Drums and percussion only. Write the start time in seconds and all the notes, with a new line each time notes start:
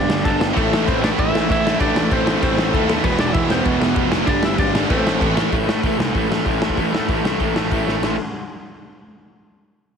0.10 snare
0.25 kick, crash
0.41 snare
0.57 kick, crash
0.73 snare
0.88 kick, crash
1.04 snare
1.19 kick, crash
1.35 snare
1.50 kick, crash
1.67 snare
1.80 kick, crash
1.96 snare
2.11 kick, crash
2.27 snare
2.42 kick, crash
2.58 snare
2.74 kick, crash
2.90 snare
3.04 kick, crash
3.19 snare
3.34 kick, crash
3.50 snare
3.65 kick, crash
3.82 snare
3.96 kick, crash
4.12 snare
4.27 kick, crash
4.43 snare
4.58 kick, crash
4.75 snare
4.90 kick, crash
5.07 snare
5.21 kick, crash
5.37 snare
5.52 kick, open hi-hat
5.69 snare
5.83 kick, open hi-hat
6.00 snare
6.15 kick, open hi-hat
6.32 snare
6.46 kick, open hi-hat
6.62 snare
6.69 kick
6.77 kick, open hi-hat
6.95 snare
7.09 kick, open hi-hat
7.25 snare
7.40 kick, open hi-hat
7.56 snare
7.71 kick, open hi-hat
7.88 snare
8.03 snare, splash